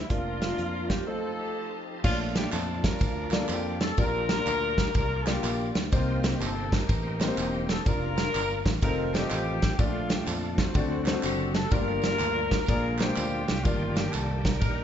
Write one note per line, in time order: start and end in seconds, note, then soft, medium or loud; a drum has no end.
0.03 0.10 E4 medium
0.08 0.51 F1 medium
0.08 1.05 F3 medium
0.08 0.37 A#3 medium
0.08 1.05 A#3 medium
0.08 1.03 A#3 medium
0.08 1.05 D4 medium
0.08 0.38 D4 medium
0.08 1.04 D4 medium
0.08 0.90 F4 loud
0.08 0.38 F4 medium
0.08 1.04 F4 loud
0.08 1.05 A#4 medium
0.08 1.06 A#4 medium
0.08 0.38 D5 medium
0.08 1.06 D5 medium
0.08 2.03 F5 medium
0.08 kick loud
0.08 closed hi-hat medium
0.42 snare loud
0.42 closed hi-hat medium
0.49 0.88 A#3 medium
0.49 0.89 D4 medium
0.49 0.89 F4 medium
0.49 0.54 E5 medium
0.56 1.00 F2 medium
0.56 0.92 F5 medium
0.56 closed hi-hat medium
0.89 1.06 G4 medium
0.89 kick medium
0.89 snare loud
0.89 closed hi-hat medium
1.06 2.02 F3 medium
1.06 1.65 A3 medium
1.06 2.02 C4 medium
1.06 1.38 C4 medium
1.06 2.02 D#4 medium
1.06 1.66 D#4 medium
1.06 1.38 D#4 medium
1.06 1.66 F4 medium
1.06 1.83 A4 loud
1.06 2.02 A4 medium
1.06 1.88 A4 medium
1.06 2.03 C5 medium
1.06 1.66 C5 medium
1.06 2.03 D#5 medium
1.06 2.03 A5 medium
1.38 2.00 C4 medium
1.38 2.00 D#4 medium
1.38 2.00 G4 medium
2.03 2.46 A#1 loud
2.03 2.81 A#2 medium
2.03 3.94 F3 medium
2.03 2.63 A3 medium
2.03 2.98 A3 medium
2.03 3.94 D4 medium
2.03 2.63 D4 medium
2.03 2.83 D4 medium
2.03 2.63 F4 medium
2.03 3.94 F4 medium
2.03 2.18 F4 loud
2.03 2.63 A4 medium
2.03 2.12 C#5 medium
2.03 3.94 D5 medium
2.03 kick loud
2.03 crash loud
2.03 tambourine medium
2.10 2.66 D5 medium
2.35 2.51 G4 loud
2.35 snare loud
2.35 ride medium
2.35 tambourine medium
2.52 2.94 F2 loud
2.52 2.82 A4 loud
2.52 clap loud
2.52 ride medium
2.52 tambourine loud
2.84 3.78 D4 medium
2.84 3.78 F4 medium
2.84 3.50 A#4 loud
2.84 kick medium
2.84 snare loud
2.84 ride medium
2.84 tambourine medium
2.99 3.42 D2 loud
2.99 kick loud
2.99 ride medium
2.99 tambourine medium
3.31 3.72 A#3 medium
3.31 3.73 D4 medium
3.31 3.73 F4 medium
3.31 3.73 A4 medium
3.31 3.73 D5 medium
3.31 snare loud
3.31 clap medium
3.31 ride medium
3.31 tambourine medium
3.49 3.91 F2 medium
3.49 3.82 G4 loud
3.49 clap loud
3.49 ride medium
3.49 tambourine loud
3.81 3.98 A4 loud
3.81 snare loud
3.81 ride medium
3.81 tambourine medium
3.97 4.39 A#1 loud
3.97 4.74 A#2 medium
3.97 4.06 A3 medium
3.97 4.56 A#3 medium
3.97 4.57 D4 medium
3.97 5.88 D4 medium
3.97 4.91 D4 medium
3.97 4.57 F4 medium
3.97 5.88 F4 medium
3.97 4.91 F4 medium
3.97 5.88 G4 medium
3.97 4.57 G4 medium
3.97 4.95 A#4 loud
3.97 5.88 D5 medium
3.97 4.57 D5 medium
3.97 kick loud
3.97 ride medium
3.97 tambourine medium
4.04 5.91 A#3 medium
4.29 snare loud
4.29 ride medium
4.29 tambourine medium
4.46 4.87 D2 loud
4.46 clap loud
4.46 ride medium
4.46 tambourine loud
4.78 kick medium
4.78 snare loud
4.78 ride medium
4.78 tambourine medium
4.94 5.36 C2 medium
4.94 5.26 D4 medium
4.94 5.88 F4 medium
4.94 5.25 A#4 loud
4.94 kick loud
4.94 ride medium
4.94 tambourine medium
5.26 5.66 A#3 medium
5.26 5.66 D4 medium
5.26 5.88 D4 medium
5.26 5.67 F4 medium
5.26 5.67 G4 medium
5.26 5.72 G4 medium
5.26 5.67 D5 medium
5.26 snare loud
5.26 clap medium
5.26 ride medium
5.26 tambourine medium
5.44 5.70 A#1 loud
5.44 clap loud
5.44 ride medium
5.44 tambourine loud
5.75 5.89 D2 loud
5.75 snare loud
5.75 ride medium
5.75 tambourine medium
5.92 6.33 C2 loud
5.92 6.68 C3 medium
5.92 6.50 A#3 medium
5.92 7.82 A#3 medium
5.92 6.86 A#3 medium
5.92 6.50 C4 medium
5.92 7.82 C4 medium
5.92 6.51 D#4 medium
5.92 7.82 D#4 medium
5.92 6.23 F4 medium
5.92 6.51 G4 medium
5.92 7.82 G4 medium
5.92 6.51 C5 medium
5.92 7.82 C5 medium
5.92 kick loud
5.92 ride medium
5.92 tambourine medium
6.23 6.41 G4 medium
6.23 snare loud
6.23 ride medium
6.23 tambourine medium
6.40 6.81 G1 medium
6.40 6.73 A4 loud
6.40 clap loud
6.40 ride medium
6.40 tambourine loud
6.72 7.65 D#4 medium
6.72 7.37 G4 medium
6.72 7.38 A#4 loud
6.72 kick medium
6.72 snare loud
6.72 ride medium
6.72 tambourine medium
6.89 7.30 A1 loud
6.89 kick loud
6.89 ride medium
6.89 tambourine medium
7.20 7.60 A#3 medium
7.20 7.61 C4 medium
7.20 7.61 D#4 medium
7.20 7.61 G4 medium
7.20 7.25 B4 medium
7.20 snare loud
7.20 clap medium
7.20 ride medium
7.20 tambourine medium
7.28 7.64 C5 medium
7.37 7.79 E1 loud
7.37 7.69 G4 loud
7.37 clap loud
7.37 ride medium
7.37 tambourine loud
7.69 7.85 A4 loud
7.69 snare loud
7.69 ride medium
7.69 tambourine medium
7.85 8.27 F1 loud
7.85 8.80 A#3 medium
7.85 8.80 D4 medium
7.85 8.44 D4 medium
7.85 8.66 D4 medium
7.85 8.80 F4 medium
7.85 8.44 F4 medium
7.85 8.66 F4 medium
7.85 8.45 A#4 medium
7.85 8.66 A#4 loud
7.85 kick loud
7.85 ride medium
7.85 tambourine medium
8.17 snare loud
8.17 ride medium
8.17 tambourine medium
8.34 8.61 G1 medium
8.34 clap loud
8.34 ride medium
8.34 tambourine loud
8.66 8.80 A1 medium
8.66 kick loud
8.66 snare loud
8.66 ride medium
8.66 tambourine medium
8.81 9.23 F1 loud
8.81 9.77 D#3 medium
8.81 9.77 F3 medium
8.81 8.90 G3 medium
8.81 9.77 C4 medium
8.81 9.08 C4 medium
8.81 9.08 D#4 medium
8.81 9.14 D#4 medium
8.81 9.77 F4 medium
8.81 9.08 F4 medium
8.81 9.08 A4 medium
8.81 9.12 A#4 loud
8.81 9.08 D#5 loud
8.81 kick loud
8.81 ride medium
8.81 tambourine medium
8.88 9.77 A3 medium
9.14 9.54 C4 medium
9.14 9.75 C4 medium
9.14 9.54 D#4 medium
9.14 9.75 D#4 medium
9.14 9.54 F4 medium
9.14 9.79 G4 loud
9.14 9.54 A4 medium
9.14 9.18 D5 medium
9.14 snare loud
9.14 ride medium
9.14 tambourine medium
9.20 9.57 D#5 medium
9.31 9.72 A1 medium
9.31 clap loud
9.31 ride medium
9.31 tambourine loud
9.62 kick loud
9.62 snare loud
9.62 ride medium
9.62 tambourine medium
9.79 10.20 A#1 loud
9.79 10.55 A#2 medium
9.79 10.74 D3 medium
9.79 10.73 F3 medium
9.79 10.73 A3 medium
9.79 10.37 A3 medium
9.79 10.72 A3 medium
9.79 10.37 D4 medium
9.79 10.74 D4 medium
9.79 10.72 D4 medium
9.79 10.74 F4 medium
9.79 10.37 F4 medium
9.79 10.11 F4 loud
9.79 10.38 A4 medium
9.79 10.38 D5 medium
9.79 kick loud
9.79 ride medium
9.79 tambourine medium
10.09 10.27 G4 medium
10.09 snare loud
10.09 ride medium
10.09 tambourine medium
10.27 10.68 F2 loud
10.27 10.59 A4 loud
10.27 clap loud
10.27 ride medium
10.27 tambourine loud
10.58 11.52 F#4 medium
10.58 11.52 A4 medium
10.58 11.04 C5 loud
10.58 kick loud
10.58 snare loud
10.58 ride medium
10.58 tambourine medium
10.74 11.16 D2 loud
10.74 11.70 D3 medium
10.74 11.51 D3 medium
10.74 11.70 F#3 medium
10.74 11.70 A3 medium
10.74 11.00 C4 medium
10.74 11.70 C4 medium
10.74 11.01 D4 medium
10.74 11.70 F#4 medium
10.74 11.01 F#4 medium
10.74 11.01 A4 medium
10.74 11.01 D5 medium
10.74 kick loud
10.74 ride medium
10.74 tambourine medium
11.06 11.47 C4 medium
11.06 11.47 D4 medium
11.06 11.11 D#4 medium
11.06 11.47 A4 medium
11.06 11.47 C5 medium
11.06 snare loud
11.06 clap medium
11.06 ride medium
11.06 tambourine medium
11.13 11.50 F#4 medium
11.23 11.65 F#1 medium
11.23 11.53 G4 loud
11.23 clap loud
11.23 ride medium
11.23 tambourine loud
11.54 11.71 A4 loud
11.54 snare loud
11.54 ride medium
11.54 tambourine medium
11.71 12.13 G1 loud
11.71 12.48 G2 medium
11.71 12.66 D3 medium
11.71 12.67 F3 medium
11.71 12.67 G3 medium
11.71 11.79 A3 medium
11.71 12.67 A#3 medium
11.71 12.30 D4 medium
11.71 12.65 D4 medium
11.71 12.66 F4 medium
11.71 12.31 F4 medium
11.71 12.65 F4 medium
11.71 12.31 G4 medium
11.71 12.66 A#4 loud
11.71 12.31 D5 medium
11.71 kick loud
11.71 ride medium
11.71 tambourine medium
11.77 12.33 A#3 medium
12.02 snare loud
12.02 ride medium
12.02 tambourine medium
12.20 12.61 D2 medium
12.20 clap loud
12.20 ride medium
12.20 tambourine medium
12.51 kick medium
12.51 snare loud
12.51 ride medium
12.51 tambourine medium
12.66 13.10 A#1 loud
12.66 13.45 A#2 medium
12.66 13.63 D3 medium
12.66 13.63 F3 medium
12.66 13.63 G#3 medium
12.66 12.94 A#3 medium
12.66 13.63 A#3 medium
12.66 12.94 D4 medium
12.66 13.02 D4 medium
12.66 13.63 F4 medium
12.66 12.94 F4 medium
12.66 13.62 F4 medium
12.66 12.94 G#4 medium
12.66 12.97 A#4 loud
12.66 12.94 D5 loud
12.66 kick loud
12.66 ride medium
12.66 tambourine medium
12.99 13.41 G#3 medium
12.99 13.40 A#3 medium
12.99 13.41 D4 medium
12.99 13.41 F4 medium
12.99 13.66 G4 loud
12.99 13.41 C5 medium
12.99 snare loud
12.99 clap medium
12.99 ride medium
12.99 tambourine medium
13.03 13.63 D4 medium
13.17 13.44 D2 loud
13.17 clap loud
13.17 ride medium
13.17 tambourine loud
13.48 13.64 C2 loud
13.48 snare loud
13.48 ride medium
13.48 tambourine medium
13.64 14.07 G1 loud
13.64 14.42 G2 medium
13.64 14.24 D#3 medium
13.64 14.84 D#3 medium
13.64 14.84 G3 medium
13.64 14.84 A#3 medium
13.64 14.24 A#3 medium
13.64 14.59 A#3 medium
13.64 14.24 D4 medium
13.64 14.59 D4 medium
13.64 13.97 F4 loud
13.64 13.73 F#4 medium
13.64 14.24 G4 medium
13.64 14.84 D5 medium
13.64 14.24 D5 medium
13.64 kick loud
13.64 ride medium
13.64 tambourine medium
13.71 14.84 G4 medium
13.95 14.13 G4 loud
13.95 snare loud
13.95 ride medium
13.95 tambourine medium
14.12 14.62 C2 medium
14.12 14.45 A4 loud
14.12 clap loud
14.12 ride medium
14.12 tambourine loud
14.45 14.59 A#4 loud
14.45 kick loud
14.45 snare loud
14.45 ride medium
14.45 tambourine medium
14.60 14.84 A#1 loud
14.60 14.84 D4 medium
14.60 14.84 D#4 medium
14.60 14.84 A#4 loud
14.60 kick loud
14.60 ride medium
14.60 tambourine medium